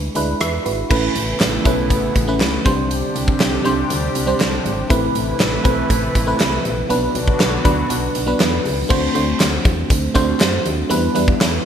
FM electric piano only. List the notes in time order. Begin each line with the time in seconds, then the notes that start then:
Already playing: G#3 D4 E4 B4
0.15 G#3 D4 E4 B4
0.41 B4 E5
0.66 F#4 B4
0.90 A3 C#4 E4 B4
1.65 A3 C#4 E4 B4
2.28 A3 C#4 E4 B4
2.65 G3 C4 D4 C5
3.64 G3 C4 D4 C5
4.27 G3 C4 D4 C5
4.90 A3 C4 E4 B4
5.64 A3 C4 E4 B4
6.26 A3 C4 E4 B4
6.89 F#3 B3 D4 B4
7.64 F#3 B3 D4 B4
8.26 F#3 B3 D4 B4
8.89 A3 C4 D4 F#4 C5
9.14 A3 C4 D4 F#4 C5
10.14 A3 C4 D4 F#4 C5
10.89 G3 B3 D4 E4 B4
11.15 G3 B3 D4 E4 B4